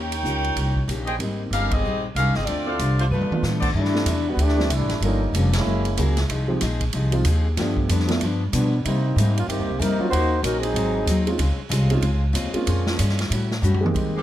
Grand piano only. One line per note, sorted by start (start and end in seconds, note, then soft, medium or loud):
0.23 0.71 A#3 soft
0.23 0.71 C#4 soft
0.23 0.72 F4 soft
0.23 0.72 G4 soft
1.19 1.67 A#3 soft
1.19 1.67 C4 soft
1.19 1.67 D#4 soft
1.19 1.67 G4 medium
2.66 2.77 A3 soft
2.66 2.78 C4 soft
2.66 2.78 E4 soft
2.66 2.78 F4 medium
3.31 3.42 A3 medium
3.31 3.42 B3 medium
3.31 3.42 D4 medium
3.31 3.43 F4 medium
3.93 4.05 G3 medium
3.93 4.05 A3 medium
3.93 4.05 C4 medium
3.93 4.05 D4 medium
3.93 4.06 E4 medium
4.57 4.69 G3 medium
4.57 4.69 A3 medium
4.57 4.69 C4 medium
4.57 4.69 D4 medium
4.57 4.70 E4 medium
5.01 5.19 G3 medium
5.01 5.20 A#3 soft
5.01 5.20 C#4 medium
5.01 5.20 F4 soft
5.01 5.20 A4 medium
5.97 6.15 F#3 soft
5.97 6.15 A#3 soft
5.97 6.15 C#4 soft
5.97 6.16 E4 soft
5.97 6.16 G#4 medium
6.48 6.60 F3 medium
6.48 6.60 G#3 medium
6.48 6.60 C4 medium
6.48 6.60 D#4 medium
6.48 6.61 G4 medium
7.12 7.23 F3 medium
7.12 7.24 G#3 medium
7.12 7.24 C4 medium
7.12 7.24 D#4 medium
7.12 7.25 F4 medium
7.57 8.04 F3 medium
7.57 8.05 A3 medium
7.57 8.05 B3 medium
7.57 8.05 D4 medium
7.57 8.06 G4 medium
8.08 8.19 F3 medium
8.08 8.19 A3 medium
8.08 8.19 B3 medium
8.08 8.20 D4 medium
8.08 8.20 E4 medium
9.99 10.10 F#3 medium
9.99 10.11 A#3 medium
9.99 10.11 C#4 medium
9.99 10.11 D#4 medium
9.99 10.11 F4 medium
11.27 11.38 G#3 medium
11.27 11.38 C4 medium
11.27 11.38 C#4 medium
11.27 11.39 D#4 medium
11.27 11.39 F4 medium
11.90 12.02 G#3 medium
11.90 12.01 C4 medium
11.90 12.02 C#4 medium
11.90 12.02 D#4 medium
11.90 12.02 F4 medium
12.54 12.96 G#3 medium
12.54 12.96 A#3 medium
12.54 12.96 C4 medium
12.54 12.97 C#4 medium
12.54 12.97 F4 medium
13.81 14.23 G#3 medium
13.81 14.23 A#3 medium
13.81 14.23 C4 medium
13.81 14.23 D#4 medium
13.81 14.23 G4 medium